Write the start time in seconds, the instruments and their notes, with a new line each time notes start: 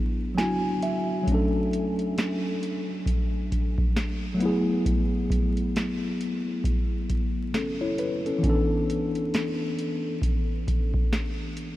Already playing: tine electric piano F#3 B3 D4 E4 G#4
0.34 tine electric piano F#3 B3 D4 G#5, snare, closed hi-hat
0.39 tine electric piano E4 F#4
0.82 tine electric piano E5, closed hi-hat
1.23 tine electric piano F#3 A3
1.27 tine electric piano C#4, kick, closed hi-hat
1.32 tine electric piano D4 A4
1.73 closed hi-hat
1.99 closed hi-hat
2.18 snare, closed hi-hat
2.63 closed hi-hat
3.06 kick, closed hi-hat
3.52 kick, closed hi-hat
3.78 kick
3.96 snare, closed hi-hat
4.34 tine electric piano F#3 A3
4.40 tine electric piano B3 E4, closed hi-hat
4.46 tine electric piano G#4
4.86 kick, closed hi-hat
5.30 kick, closed hi-hat
5.57 closed hi-hat
5.76 snare, closed hi-hat
6.21 closed hi-hat
6.64 kick, closed hi-hat
7.10 kick, closed hi-hat
7.54 tine electric piano C#4 A4, snare, closed hi-hat
7.81 tine electric piano E4 C#5
7.98 tine electric piano B4, closed hi-hat
8.26 tine electric piano C#4 A4, closed hi-hat
8.38 tine electric piano E3 B3
8.43 tine electric piano C#4 D4, kick, closed hi-hat
8.50 tine electric piano A4
8.90 closed hi-hat
9.15 closed hi-hat
9.34 snare, closed hi-hat
9.79 closed hi-hat
10.22 kick, closed hi-hat
10.68 kick, closed hi-hat
10.94 kick
11.13 snare, closed hi-hat
11.57 closed hi-hat